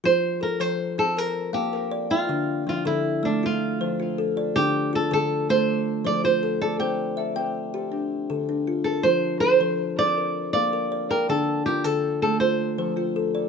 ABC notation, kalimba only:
X:1
M:12/8
L:1/8
Q:3/8=107
K:F
V:1 name="Kalimba"
F2 A c3 B2 f B2 g | D2 F, A3 F2 c F2 d | D2 F A3 z2 c F2 d | c2 e g3 D2 A D2 B |
F2 A c3 B2 f B2 g | D2 F A3 F2 c F2 d |]
V:2 name="Kalimba"
F,2 z F,2 C z2 B,2 d2 | D,2 z D,2 A, z2 F,2 A2 | D,2 z D,2 A, z2 F,2 A2 | C2 z C2 G z2 D,2 F2 |
F,2 z F,2 C z2 B,2 d2 | D,2 z D,2 A, z2 F,2 A2 |]